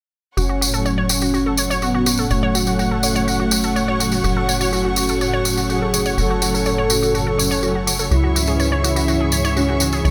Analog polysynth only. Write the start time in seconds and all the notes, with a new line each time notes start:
0.37 C#4
1.10 C#4
1.82 B3
2.31 A3
4.24 F#4
4.97 F#4
5.69 G#4
6.18 A4
8.11 E4
8.84 E4
9.56 C#4
10.05 C#4